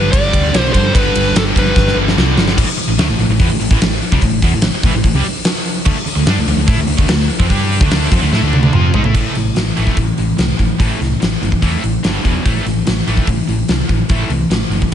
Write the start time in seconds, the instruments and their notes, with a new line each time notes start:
Already playing: overdriven electric guitar G2 D3 G3, distorted electric guitar G2 D3 G3
0.12 fingered electric bass G1, lead electric guitar D5, kick, ride
0.32 fingered electric bass D2, overdriven electric guitar G2 D3 G3, kick, ride
0.52 fingered electric bass B1, overdriven electric guitar G2 D3 G3, snare, ride
0.61 lead electric guitar C5
0.65 snare
0.73 fingered electric bass G2, lead electric guitar C5, kick, ride
0.94 fingered electric bass G1, overdriven electric guitar G2 D3 G3, lead electric guitar B4, kick, ride
1.15 fingered electric bass G1, ride
1.35 fingered electric bass G1, lead electric guitar A4, snare, ride
1.56 fingered electric bass G1, distorted electric guitar G2 D3 G3, lead electric guitar B4, kick, ride
1.76 fingered electric bass G1, kick, snare
1.87 snare
1.95 fingered electric bass G1, overdriven electric guitar G2 D3 G3
2.08 snare
2.15 fingered electric bass C2, overdriven electric guitar G2 D3 G3, snare
2.36 fingered electric bass G1, snare
2.48 snare
2.57 fingered electric bass A1, overdriven electric guitar A2 E3, kick, crash
2.67 muted distorted electric guitar stroke, muted overdriven electric guitar stroke
2.77 muted distorted electric guitar stroke, muted fingered electric bass stroke, muted overdriven electric guitar stroke, open hi-hat
2.87 fingered electric bass A1, overdriven electric guitar A2 E3
2.98 fingered electric bass D2, overdriven electric guitar D3 A3, snare, open hi-hat
3.09 fingered electric bass A1, overdriven electric guitar A2 E3
3.18 fingered electric bass A1, overdriven electric guitar A2 E3, open hi-hat
3.28 fingered electric bass A1, overdriven electric guitar A2 E3
3.40 fingered electric bass E2, overdriven electric guitar E3 B3, kick, open hi-hat
3.49 fingered electric bass A1, overdriven electric guitar A2 E3
3.60 fingered electric bass A1, overdriven electric guitar A2 E3, open hi-hat
3.71 fingered electric bass A1, overdriven electric guitar A2 E3, kick
3.80 fingered electric bass A1, overdriven electric guitar A2 E3, snare, open hi-hat
4.02 open hi-hat
4.12 fingered electric bass C2, overdriven electric guitar C3 G3, kick
4.22 fingered electric bass A1, overdriven electric guitar A2 E3, kick, open hi-hat
4.42 fingered electric bass E2, overdriven electric guitar E3 B3, kick, open hi-hat
4.53 fingered electric bass A1, overdriven electric guitar A2 E3
4.62 snare, open hi-hat
4.74 muted fingered electric bass stroke, muted overdriven electric guitar stroke, muted distorted electric guitar stroke
4.83 fingered electric bass A1, overdriven electric guitar A2 E3, kick, open hi-hat
4.94 fingered electric bass A1, overdriven electric guitar A2 E3
5.04 fingered electric bass A1, overdriven electric guitar A2 E3, kick, open hi-hat
5.14 fingered electric bass C2, overdriven electric guitar C3 G3
5.24 muted overdriven electric guitar stroke, muted distorted electric guitar stroke, snare, open hi-hat
5.44 snare, open hi-hat
5.66 open hi-hat
5.85 fingered electric bass D2, overdriven electric guitar D3 A3, kick, crash
5.95 muted fingered electric bass stroke, muted overdriven electric guitar stroke, muted distorted electric guitar stroke
6.06 muted fingered electric bass stroke, muted overdriven electric guitar stroke, muted distorted electric guitar stroke, open hi-hat
6.15 fingered electric bass D2, overdriven electric guitar D3 A3
6.26 fingered electric bass G2, overdriven electric guitar G3 D4, snare, open hi-hat
6.37 fingered electric bass D2, overdriven electric guitar D3 A3
6.46 fingered electric bass D2, overdriven electric guitar D3 A3, open hi-hat
6.56 fingered electric bass D2, overdriven electric guitar D3 A3
6.67 fingered electric bass A2, overdriven electric guitar A3 E4, kick, open hi-hat
6.77 fingered electric bass D2, overdriven electric guitar D3 A3
6.87 fingered electric bass D2, overdriven electric guitar D3 A3, open hi-hat
6.97 fingered electric bass D2, overdriven electric guitar D3 A3, kick
7.08 fingered electric bass D2, overdriven electric guitar D3 A3, snare, open hi-hat
7.30 open hi-hat
7.39 fingered electric bass F2, overdriven electric guitar F3 C4, kick
7.49 fingered electric bass G2, overdriven electric guitar G3 D4 G4, kick, open hi-hat
7.72 open hi-hat
7.80 fingered electric bass D2, overdriven electric guitar D3 A3 D4, kick
7.91 snare, open hi-hat
8.12 fingered electric bass F2, overdriven electric guitar F3 C4, kick, open hi-hat
8.21 fingered electric bass D2, overdriven electric guitar D3 A3
8.31 fingered electric bass A2, overdriven electric guitar A3 E4, snare
8.42 fingered electric bass D2, overdriven electric guitar D3 A3 D4
8.53 high tom
8.63 high tom
8.73 fingered electric bass F2, overdriven electric guitar F3 C4 F4, mid tom
8.93 fingered electric bass G#2, overdriven electric guitar G#3 D#4, floor tom
9.04 fingered electric bass A2, overdriven electric guitar A3 E4, floor tom
9.14 fingered electric bass A1, overdriven electric guitar A2 E3 A3, kick, crash
9.35 fingered electric bass A1, overdriven electric guitar A2 E3, snare, open hi-hat
9.55 fingered electric bass A1, overdriven electric guitar A2 E3, snare, open hi-hat
9.76 fingered electric bass A1, overdriven electric guitar A2 E3 A3, open hi-hat
9.87 kick, snare
9.96 fingered electric bass A1, overdriven electric guitar A2 E3, kick, open hi-hat
10.18 fingered electric bass A1, overdriven electric guitar A2 E3, open hi-hat
10.37 fingered electric bass C2, overdriven electric guitar A2 E3, snare, open hi-hat
10.57 fingered electric bass A1, overdriven electric guitar A2 E3, kick, open hi-hat
10.78 fingered electric bass A1, overdriven electric guitar A2 E3 A3, kick, open hi-hat
10.98 fingered electric bass C2, overdriven electric guitar A2 E3, open hi-hat
11.03 snare
11.20 fingered electric bass A1, overdriven electric guitar A2 E3, snare, open hi-hat
11.41 fingered electric bass G1, overdriven electric guitar A2 E3, open hi-hat
11.52 kick
11.62 fingered electric bass E2, overdriven electric guitar A2 E3 A3, kick, open hi-hat
11.83 fingered electric bass A1, overdriven electric guitar A2 E3, open hi-hat
12.04 fingered electric bass G1, overdriven electric guitar G2 D3 G3, snare, open hi-hat
12.23 fingered electric bass E1, overdriven electric guitar E2 B2 E3, kick, open hi-hat
12.45 fingered electric bass A1, overdriven electric guitar A2 E3 A3, kick, open hi-hat
12.64 fingered electric bass A1, overdriven electric guitar A2 E3, snare, open hi-hat
12.86 fingered electric bass A1, overdriven electric guitar A2 E3, snare, open hi-hat
13.07 fingered electric bass A1, overdriven electric guitar A2 E3 A3, open hi-hat
13.17 kick
13.27 fingered electric bass A1, overdriven electric guitar A2 E3, kick, open hi-hat
13.48 fingered electric bass A1, overdriven electric guitar A2 E3, open hi-hat
13.69 fingered electric bass C2, overdriven electric guitar A2 E3, snare, open hi-hat
13.89 fingered electric bass A1, overdriven electric guitar A2 E3, kick, open hi-hat
14.09 fingered electric bass A1, overdriven electric guitar A2 E3 A3, kick, open hi-hat
14.30 fingered electric bass C2, overdriven electric guitar A2 E3, open hi-hat
14.50 fingered electric bass A1, overdriven electric guitar A2 E3, snare, open hi-hat
14.69 fingered electric bass G1, overdriven electric guitar A2 E3, open hi-hat
14.82 kick